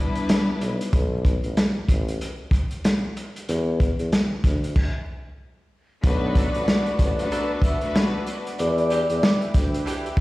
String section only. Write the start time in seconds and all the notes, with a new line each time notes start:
Already playing: G3 B3 D4 E4 B4
6.03 A3 B3 D4 F#4 B4
7.18 A3 B3 D4 F#4 B4
7.81 A3 B3 D4 F#4 B4